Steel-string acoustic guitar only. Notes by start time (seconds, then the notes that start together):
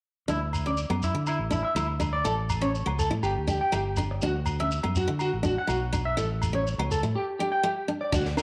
0.28 D4
0.66 C#4
0.90 B3
1.15 muted steel-string acoustic guitar stroke
1.51 D4
1.76 E4
2.00 D4
2.25 E4
2.61 C#4
2.86 B3
3.11 E4
3.47 D4
3.72 E4
3.98 D4
4.23 D4
4.60 C#4
4.84 B3
5.08 E4
5.43 D4
5.67 E4
5.93 D4
6.17 E4
6.53 C#4
6.79 B3
7.03 E4
7.40 D4
7.63 E4
7.88 D4
8.12 D4